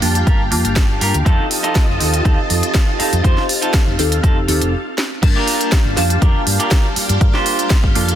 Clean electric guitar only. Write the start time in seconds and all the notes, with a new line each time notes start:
0.02 muted clean electric guitar stroke
0.27 F4 G4 A#4
0.51 muted clean electric guitar stroke
0.64 muted clean electric guitar stroke
1.01 F4 G4 A#4
1.25 D#4 F4 A4
1.63 D#4 F4 A4
2.00 muted clean electric guitar stroke
2.25 D#4 F4 A4
2.50 muted clean electric guitar stroke
2.62 muted clean electric guitar stroke
2.99 D#4 F4 A4
3.24 D#4 F4 C5
3.62 D#4 F4 A4
3.98 muted clean electric guitar stroke
4.23 D#4 F4 A4
4.48 muted clean electric guitar stroke
4.61 muted clean electric guitar stroke
5.22 muted clean electric guitar stroke
5.35 D4 F4 G4 A#4
6.21 D4 F4 G4 A#4
6.59 D4 F4 G4 A#4
7.09 muted clean electric guitar stroke
7.21 muted clean electric guitar stroke
7.34 D4 F4 G4 C5